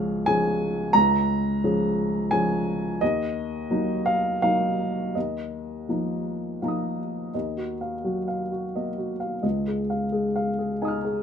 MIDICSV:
0, 0, Header, 1, 2, 480
1, 0, Start_track
1, 0, Key_signature, -6, "minor"
1, 0, Tempo, 689655
1, 654, Time_signature, 3, 2, 24, 8
1, 2580, Tempo, 725514
1, 4980, Tempo, 696864
1, 7662, End_track
2, 0, Start_track
2, 0, Title_t, "Upright piano"
2, 0, Program_c, 0, 0
2, 0, Control_c, 0, 64, 127
2, 0, Note_on_c, 0, 37, 57
2, 0, Note_on_c, 0, 53, 44
2, 0, Note_on_c, 0, 61, 46
2, 0, Note_on_c, 0, 68, 53
2, 0, Note_on_c, 0, 77, 81
2, 153, Note_off_c, 0, 53, 0
2, 154, Note_off_c, 0, 61, 0
2, 156, Note_off_c, 0, 68, 0
2, 177, Note_off_c, 0, 77, 0
2, 182, Note_on_c, 0, 80, 92
2, 187, Note_on_c, 0, 61, 48
2, 191, Note_on_c, 0, 53, 51
2, 191, Note_on_c, 0, 68, 55
2, 632, Note_off_c, 0, 61, 0
2, 633, Note_off_c, 0, 53, 0
2, 634, Note_off_c, 0, 68, 0
2, 648, Note_on_c, 0, 82, 103
2, 657, Note_off_c, 0, 37, 0
2, 657, Note_off_c, 0, 80, 0
2, 657, Note_on_c, 0, 37, 58
2, 665, Control_c, 0, 64, 0
2, 787, Control_c, 0, 64, 127
2, 1122, Note_off_c, 0, 37, 0
2, 1142, Note_on_c, 0, 53, 44
2, 1142, Note_on_c, 0, 61, 49
2, 1146, Note_on_c, 0, 68, 51
2, 1589, Note_off_c, 0, 53, 0
2, 1589, Note_off_c, 0, 61, 0
2, 1591, Note_off_c, 0, 68, 0
2, 1607, Note_on_c, 0, 80, 90
2, 1610, Note_off_c, 0, 82, 0
2, 1616, Note_on_c, 0, 53, 51
2, 1617, Note_on_c, 0, 68, 48
2, 1621, Note_on_c, 0, 61, 48
2, 2068, Note_off_c, 0, 53, 0
2, 2069, Note_off_c, 0, 68, 0
2, 2071, Note_off_c, 0, 61, 0
2, 2092, Note_off_c, 0, 80, 0
2, 2096, Note_on_c, 0, 75, 79
2, 2106, Note_on_c, 0, 39, 56
2, 2108, Control_c, 0, 64, 0
2, 2227, Control_c, 0, 64, 127
2, 2572, Note_off_c, 0, 39, 0
2, 2577, Note_on_c, 0, 54, 40
2, 2577, Note_on_c, 0, 58, 38
2, 2581, Note_on_c, 0, 63, 43
2, 2812, Note_on_c, 0, 77, 81
2, 2816, Note_off_c, 0, 75, 0
2, 3024, Note_off_c, 0, 54, 0
2, 3024, Note_off_c, 0, 58, 0
2, 3026, Note_off_c, 0, 63, 0
2, 3044, Note_off_c, 0, 77, 0
2, 3054, Note_on_c, 0, 77, 81
2, 3059, Note_on_c, 0, 54, 41
2, 3063, Note_on_c, 0, 58, 42
2, 3064, Note_on_c, 0, 63, 44
2, 3510, Note_off_c, 0, 54, 0
2, 3512, Note_off_c, 0, 58, 0
2, 3512, Note_off_c, 0, 63, 0
2, 3534, Note_off_c, 0, 77, 0
2, 3535, Note_on_c, 0, 75, 49
2, 3540, Note_on_c, 0, 39, 44
2, 3546, Control_c, 0, 64, 0
2, 3669, Control_c, 0, 64, 127
2, 4010, Note_off_c, 0, 39, 0
2, 4024, Note_on_c, 0, 53, 35
2, 4027, Note_on_c, 0, 58, 33
2, 4030, Note_on_c, 0, 63, 40
2, 4477, Note_off_c, 0, 53, 0
2, 4479, Note_off_c, 0, 58, 0
2, 4481, Note_off_c, 0, 63, 0
2, 4509, Note_on_c, 0, 53, 34
2, 4509, Note_on_c, 0, 77, 29
2, 4512, Note_on_c, 0, 58, 35
2, 4517, Note_on_c, 0, 63, 39
2, 4526, Note_on_c, 0, 82, 32
2, 4549, Note_on_c, 0, 87, 30
2, 4744, Note_off_c, 0, 75, 0
2, 4957, Note_off_c, 0, 53, 0
2, 4957, Note_off_c, 0, 77, 0
2, 4958, Note_off_c, 0, 58, 0
2, 4961, Note_off_c, 0, 63, 0
2, 4966, Note_off_c, 0, 82, 0
2, 4977, Note_off_c, 0, 87, 0
2, 4986, Note_on_c, 0, 39, 41
2, 4986, Note_on_c, 0, 75, 35
2, 4994, Control_c, 0, 64, 0
2, 5130, Control_c, 0, 64, 127
2, 5145, Note_on_c, 0, 66, 33
2, 5243, Note_off_c, 0, 75, 0
2, 5308, Note_on_c, 0, 77, 35
2, 5403, Note_off_c, 0, 66, 0
2, 5468, Note_on_c, 0, 66, 36
2, 5469, Note_on_c, 0, 54, 33
2, 5565, Note_off_c, 0, 77, 0
2, 5630, Note_on_c, 0, 77, 40
2, 5725, Note_off_c, 0, 66, 0
2, 5797, Note_on_c, 0, 66, 39
2, 5886, Note_off_c, 0, 77, 0
2, 5959, Note_on_c, 0, 75, 40
2, 5964, Note_on_c, 0, 58, 36
2, 6050, Note_off_c, 0, 66, 0
2, 6113, Note_on_c, 0, 66, 37
2, 6210, Note_off_c, 0, 75, 0
2, 6239, Note_off_c, 0, 54, 0
2, 6265, Note_on_c, 0, 77, 40
2, 6367, Note_off_c, 0, 66, 0
2, 6404, Note_off_c, 0, 39, 0
2, 6408, Note_off_c, 0, 58, 0
2, 6421, Note_on_c, 0, 75, 42
2, 6424, Note_on_c, 0, 37, 43
2, 6427, Note_off_c, 0, 77, 0
2, 6440, Control_c, 0, 64, 0
2, 6568, Control_c, 0, 64, 127
2, 6593, Note_on_c, 0, 68, 40
2, 6680, Note_off_c, 0, 75, 0
2, 6747, Note_on_c, 0, 77, 39
2, 6846, Note_off_c, 0, 68, 0
2, 6901, Note_on_c, 0, 68, 46
2, 6903, Note_on_c, 0, 56, 39
2, 7002, Note_off_c, 0, 77, 0
2, 7061, Note_on_c, 0, 77, 48
2, 7158, Note_off_c, 0, 68, 0
2, 7221, Note_on_c, 0, 68, 48
2, 7317, Note_off_c, 0, 77, 0
2, 7379, Note_on_c, 0, 80, 36
2, 7382, Note_on_c, 0, 75, 48
2, 7384, Note_on_c, 0, 63, 44
2, 7401, Note_on_c, 0, 87, 39
2, 7422, Note_on_c, 0, 89, 37
2, 7476, Note_off_c, 0, 68, 0
2, 7537, Note_on_c, 0, 68, 46
2, 7635, Note_off_c, 0, 75, 0
2, 7662, Note_off_c, 0, 37, 0
2, 7662, Note_off_c, 0, 56, 0
2, 7662, Note_off_c, 0, 63, 0
2, 7662, Note_off_c, 0, 68, 0
2, 7662, Note_off_c, 0, 80, 0
2, 7662, Note_off_c, 0, 87, 0
2, 7662, Note_off_c, 0, 89, 0
2, 7662, End_track
0, 0, End_of_file